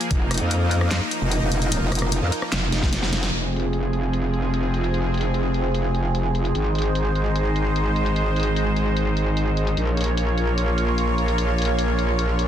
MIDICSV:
0, 0, Header, 1, 4, 480
1, 0, Start_track
1, 0, Key_signature, -4, "minor"
1, 0, Tempo, 402685
1, 128, Time_signature, 4, 2, 24, 8
1, 14875, End_track
2, 0, Start_track
2, 0, Title_t, "Supersaw synth"
2, 0, Program_c, 0, 81
2, 0, Note_on_c, 0, 53, 77
2, 0, Note_on_c, 0, 58, 66
2, 128, Note_on_c, 0, 63, 81
2, 3920, Note_off_c, 0, 53, 0
2, 3920, Note_off_c, 0, 58, 0
2, 3953, Note_off_c, 0, 63, 0
2, 3968, Note_on_c, 0, 53, 67
2, 3968, Note_on_c, 0, 60, 66
2, 3968, Note_on_c, 0, 68, 77
2, 7769, Note_off_c, 0, 53, 0
2, 7769, Note_off_c, 0, 60, 0
2, 7769, Note_off_c, 0, 68, 0
2, 7806, Note_on_c, 0, 56, 68
2, 7806, Note_on_c, 0, 63, 61
2, 7806, Note_on_c, 0, 72, 78
2, 11608, Note_off_c, 0, 63, 0
2, 11608, Note_off_c, 0, 72, 0
2, 11609, Note_off_c, 0, 56, 0
2, 11647, Note_on_c, 0, 58, 70
2, 11647, Note_on_c, 0, 65, 65
2, 11647, Note_on_c, 0, 73, 79
2, 14875, Note_off_c, 0, 58, 0
2, 14875, Note_off_c, 0, 65, 0
2, 14875, Note_off_c, 0, 73, 0
2, 14875, End_track
3, 0, Start_track
3, 0, Title_t, "Wobble bass"
3, 0, Program_c, 1, 39
3, 128, Note_on_c, 1, 29, 105
3, 469, Note_off_c, 1, 29, 0
3, 488, Note_on_c, 1, 41, 100
3, 1189, Note_off_c, 1, 41, 0
3, 1448, Note_on_c, 1, 29, 102
3, 1669, Note_off_c, 1, 29, 0
3, 1688, Note_on_c, 1, 29, 103
3, 2149, Note_off_c, 1, 29, 0
3, 2168, Note_on_c, 1, 29, 98
3, 2629, Note_off_c, 1, 29, 0
3, 2648, Note_on_c, 1, 41, 90
3, 2748, Note_off_c, 1, 41, 0
3, 3008, Note_on_c, 1, 29, 96
3, 3949, Note_off_c, 1, 29, 0
3, 3967, Note_on_c, 1, 29, 88
3, 7784, Note_off_c, 1, 29, 0
3, 7808, Note_on_c, 1, 32, 89
3, 11624, Note_off_c, 1, 32, 0
3, 11647, Note_on_c, 1, 34, 91
3, 14875, Note_off_c, 1, 34, 0
3, 14875, End_track
4, 0, Start_track
4, 0, Title_t, "Drums"
4, 8, Note_on_c, 9, 42, 36
4, 127, Note_off_c, 9, 42, 0
4, 127, Note_on_c, 9, 42, 82
4, 128, Note_on_c, 9, 36, 123
4, 246, Note_off_c, 9, 42, 0
4, 247, Note_off_c, 9, 36, 0
4, 367, Note_on_c, 9, 37, 57
4, 367, Note_on_c, 9, 42, 52
4, 408, Note_off_c, 9, 42, 0
4, 408, Note_on_c, 9, 42, 66
4, 447, Note_off_c, 9, 42, 0
4, 447, Note_on_c, 9, 42, 87
4, 486, Note_off_c, 9, 37, 0
4, 567, Note_off_c, 9, 42, 0
4, 607, Note_on_c, 9, 42, 86
4, 727, Note_off_c, 9, 42, 0
4, 848, Note_on_c, 9, 42, 55
4, 967, Note_off_c, 9, 42, 0
4, 968, Note_on_c, 9, 37, 58
4, 1087, Note_off_c, 9, 37, 0
4, 1087, Note_on_c, 9, 38, 112
4, 1087, Note_on_c, 9, 39, 89
4, 1087, Note_on_c, 9, 42, 80
4, 1206, Note_off_c, 9, 38, 0
4, 1206, Note_off_c, 9, 39, 0
4, 1206, Note_off_c, 9, 42, 0
4, 1327, Note_on_c, 9, 42, 55
4, 1446, Note_off_c, 9, 42, 0
4, 1567, Note_on_c, 9, 42, 78
4, 1686, Note_off_c, 9, 42, 0
4, 1807, Note_on_c, 9, 42, 52
4, 1927, Note_off_c, 9, 42, 0
4, 1928, Note_on_c, 9, 42, 39
4, 2048, Note_off_c, 9, 42, 0
4, 2048, Note_on_c, 9, 42, 84
4, 2167, Note_off_c, 9, 42, 0
4, 2287, Note_on_c, 9, 37, 55
4, 2287, Note_on_c, 9, 42, 53
4, 2328, Note_off_c, 9, 42, 0
4, 2328, Note_on_c, 9, 42, 71
4, 2368, Note_off_c, 9, 42, 0
4, 2368, Note_on_c, 9, 42, 85
4, 2407, Note_off_c, 9, 37, 0
4, 2408, Note_on_c, 9, 37, 61
4, 2487, Note_off_c, 9, 42, 0
4, 2527, Note_on_c, 9, 42, 84
4, 2528, Note_off_c, 9, 37, 0
4, 2646, Note_off_c, 9, 42, 0
4, 2768, Note_on_c, 9, 42, 57
4, 2887, Note_off_c, 9, 42, 0
4, 2888, Note_on_c, 9, 37, 54
4, 3007, Note_off_c, 9, 37, 0
4, 3008, Note_on_c, 9, 38, 113
4, 3008, Note_on_c, 9, 39, 91
4, 3008, Note_on_c, 9, 42, 84
4, 3127, Note_off_c, 9, 38, 0
4, 3127, Note_off_c, 9, 39, 0
4, 3127, Note_off_c, 9, 42, 0
4, 3247, Note_on_c, 9, 38, 62
4, 3247, Note_on_c, 9, 42, 59
4, 3367, Note_off_c, 9, 38, 0
4, 3367, Note_off_c, 9, 42, 0
4, 3368, Note_on_c, 9, 36, 59
4, 3368, Note_on_c, 9, 38, 59
4, 3487, Note_off_c, 9, 38, 0
4, 3487, Note_on_c, 9, 38, 75
4, 3487, Note_on_c, 9, 42, 81
4, 3488, Note_off_c, 9, 36, 0
4, 3607, Note_off_c, 9, 38, 0
4, 3607, Note_off_c, 9, 42, 0
4, 3608, Note_on_c, 9, 38, 77
4, 3727, Note_off_c, 9, 38, 0
4, 3727, Note_on_c, 9, 38, 96
4, 3727, Note_on_c, 9, 42, 55
4, 3846, Note_off_c, 9, 38, 0
4, 3846, Note_off_c, 9, 42, 0
4, 3848, Note_on_c, 9, 38, 89
4, 3848, Note_on_c, 9, 42, 41
4, 3967, Note_off_c, 9, 38, 0
4, 3967, Note_off_c, 9, 42, 0
4, 3967, Note_on_c, 9, 42, 73
4, 4086, Note_off_c, 9, 42, 0
4, 4207, Note_on_c, 9, 42, 46
4, 4247, Note_off_c, 9, 42, 0
4, 4247, Note_on_c, 9, 42, 59
4, 4287, Note_off_c, 9, 42, 0
4, 4287, Note_on_c, 9, 42, 74
4, 4406, Note_off_c, 9, 42, 0
4, 4447, Note_on_c, 9, 42, 75
4, 4566, Note_off_c, 9, 42, 0
4, 4687, Note_on_c, 9, 42, 50
4, 4806, Note_off_c, 9, 42, 0
4, 4927, Note_on_c, 9, 42, 72
4, 5047, Note_off_c, 9, 42, 0
4, 5168, Note_on_c, 9, 42, 48
4, 5287, Note_off_c, 9, 42, 0
4, 5408, Note_on_c, 9, 42, 72
4, 5527, Note_off_c, 9, 42, 0
4, 5648, Note_on_c, 9, 42, 47
4, 5767, Note_off_c, 9, 42, 0
4, 5769, Note_on_c, 9, 42, 32
4, 5888, Note_off_c, 9, 42, 0
4, 5888, Note_on_c, 9, 42, 69
4, 6008, Note_off_c, 9, 42, 0
4, 6128, Note_on_c, 9, 42, 46
4, 6168, Note_off_c, 9, 42, 0
4, 6168, Note_on_c, 9, 42, 55
4, 6208, Note_off_c, 9, 42, 0
4, 6208, Note_on_c, 9, 42, 75
4, 6327, Note_off_c, 9, 42, 0
4, 6368, Note_on_c, 9, 42, 71
4, 6487, Note_off_c, 9, 42, 0
4, 6607, Note_on_c, 9, 42, 46
4, 6726, Note_off_c, 9, 42, 0
4, 6847, Note_on_c, 9, 42, 65
4, 6966, Note_off_c, 9, 42, 0
4, 7087, Note_on_c, 9, 42, 47
4, 7206, Note_off_c, 9, 42, 0
4, 7327, Note_on_c, 9, 42, 72
4, 7446, Note_off_c, 9, 42, 0
4, 7567, Note_on_c, 9, 42, 47
4, 7686, Note_off_c, 9, 42, 0
4, 7687, Note_on_c, 9, 42, 33
4, 7807, Note_off_c, 9, 42, 0
4, 7807, Note_on_c, 9, 42, 66
4, 7926, Note_off_c, 9, 42, 0
4, 8047, Note_on_c, 9, 42, 45
4, 8087, Note_off_c, 9, 42, 0
4, 8087, Note_on_c, 9, 42, 58
4, 8127, Note_off_c, 9, 42, 0
4, 8127, Note_on_c, 9, 42, 71
4, 8246, Note_off_c, 9, 42, 0
4, 8287, Note_on_c, 9, 42, 67
4, 8406, Note_off_c, 9, 42, 0
4, 8528, Note_on_c, 9, 42, 43
4, 8647, Note_off_c, 9, 42, 0
4, 8768, Note_on_c, 9, 42, 67
4, 8887, Note_off_c, 9, 42, 0
4, 9009, Note_on_c, 9, 42, 45
4, 9128, Note_off_c, 9, 42, 0
4, 9248, Note_on_c, 9, 42, 64
4, 9367, Note_off_c, 9, 42, 0
4, 9488, Note_on_c, 9, 42, 43
4, 9607, Note_off_c, 9, 42, 0
4, 9608, Note_on_c, 9, 42, 34
4, 9728, Note_off_c, 9, 42, 0
4, 9728, Note_on_c, 9, 42, 66
4, 9847, Note_off_c, 9, 42, 0
4, 9968, Note_on_c, 9, 42, 43
4, 10007, Note_off_c, 9, 42, 0
4, 10007, Note_on_c, 9, 42, 54
4, 10047, Note_off_c, 9, 42, 0
4, 10047, Note_on_c, 9, 42, 65
4, 10166, Note_off_c, 9, 42, 0
4, 10208, Note_on_c, 9, 42, 64
4, 10327, Note_off_c, 9, 42, 0
4, 10448, Note_on_c, 9, 42, 43
4, 10567, Note_off_c, 9, 42, 0
4, 10687, Note_on_c, 9, 42, 67
4, 10807, Note_off_c, 9, 42, 0
4, 10928, Note_on_c, 9, 42, 46
4, 11047, Note_off_c, 9, 42, 0
4, 11167, Note_on_c, 9, 42, 63
4, 11286, Note_off_c, 9, 42, 0
4, 11408, Note_on_c, 9, 42, 43
4, 11527, Note_off_c, 9, 42, 0
4, 11528, Note_on_c, 9, 42, 31
4, 11647, Note_off_c, 9, 42, 0
4, 11647, Note_on_c, 9, 42, 66
4, 11767, Note_off_c, 9, 42, 0
4, 11887, Note_on_c, 9, 42, 44
4, 11927, Note_off_c, 9, 42, 0
4, 11927, Note_on_c, 9, 42, 57
4, 11967, Note_off_c, 9, 42, 0
4, 11967, Note_on_c, 9, 42, 70
4, 12087, Note_off_c, 9, 42, 0
4, 12127, Note_on_c, 9, 42, 67
4, 12246, Note_off_c, 9, 42, 0
4, 12367, Note_on_c, 9, 42, 44
4, 12487, Note_off_c, 9, 42, 0
4, 12607, Note_on_c, 9, 42, 67
4, 12726, Note_off_c, 9, 42, 0
4, 12847, Note_on_c, 9, 42, 45
4, 12966, Note_off_c, 9, 42, 0
4, 13087, Note_on_c, 9, 42, 64
4, 13206, Note_off_c, 9, 42, 0
4, 13327, Note_on_c, 9, 42, 45
4, 13446, Note_off_c, 9, 42, 0
4, 13448, Note_on_c, 9, 42, 31
4, 13567, Note_off_c, 9, 42, 0
4, 13567, Note_on_c, 9, 42, 71
4, 13686, Note_off_c, 9, 42, 0
4, 13808, Note_on_c, 9, 42, 44
4, 13848, Note_off_c, 9, 42, 0
4, 13848, Note_on_c, 9, 42, 57
4, 13887, Note_off_c, 9, 42, 0
4, 13887, Note_on_c, 9, 42, 71
4, 14006, Note_off_c, 9, 42, 0
4, 14047, Note_on_c, 9, 42, 68
4, 14167, Note_off_c, 9, 42, 0
4, 14288, Note_on_c, 9, 42, 47
4, 14407, Note_off_c, 9, 42, 0
4, 14528, Note_on_c, 9, 42, 65
4, 14647, Note_off_c, 9, 42, 0
4, 14768, Note_on_c, 9, 42, 47
4, 14875, Note_off_c, 9, 42, 0
4, 14875, End_track
0, 0, End_of_file